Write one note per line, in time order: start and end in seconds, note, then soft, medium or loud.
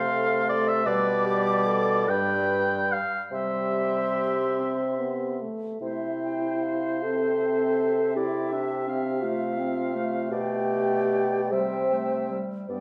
0.00 0.82 C3 medium
0.00 0.88 A3 medium
0.00 0.84 A4 medium
0.00 0.49 F5 loud
0.00 0.87 C6 medium
0.49 0.69 D5 loud
0.68 0.88 E5 loud
0.85 2.10 B2 medium
0.85 2.08 G3 medium
0.85 1.27 B4 medium
0.85 2.11 D5 loud
0.85 2.11 D6 medium
1.26 1.68 G4 medium
1.67 2.10 A4 medium
2.09 3.01 G2 medium
2.09 2.99 G3 medium
2.09 3.01 B4 medium
2.09 2.93 G5 loud
2.09 3.02 B5 medium
2.92 3.21 F5 medium
3.31 5.44 C3 medium
3.31 4.45 G3 medium
3.31 5.44 G4 medium
3.31 5.38 E5 medium
3.31 5.44 C6 medium
4.57 5.01 C4 medium
4.99 5.43 B3 medium
5.42 5.81 A3 medium
5.82 10.27 C3 medium
5.82 7.05 E4 medium
5.82 8.13 C5 medium
5.82 6.20 E5 medium
6.24 6.64 G5 soft
6.63 7.05 F5 soft
7.03 8.17 C4 medium
7.03 8.17 A4 medium
7.03 10.31 E5 medium
8.16 8.53 E4 medium
8.16 9.25 G4 medium
8.16 8.51 D5 medium
8.52 8.88 D4 medium
8.52 8.90 E5 medium
8.87 9.25 C4 medium
8.87 9.24 F5 medium
9.23 9.61 A3 medium
9.23 10.32 F4 medium
9.23 10.30 F5 medium
9.59 9.97 C4 medium
9.95 11.53 A3 medium
10.31 11.49 B2 medium
10.31 11.54 G4 medium
10.31 11.53 D5 medium
10.31 11.49 G5 medium
11.51 12.38 C3 medium
11.51 11.90 G3 medium
11.51 12.40 C5 medium
11.51 12.40 E5 medium
11.51 12.38 G5 medium
11.91 12.31 A3 medium
12.29 12.69 G3 medium
12.69 12.80 G2 medium
12.69 12.80 B3 medium
12.69 12.80 B4 medium
12.69 12.80 D5 soft
12.69 12.80 G5 soft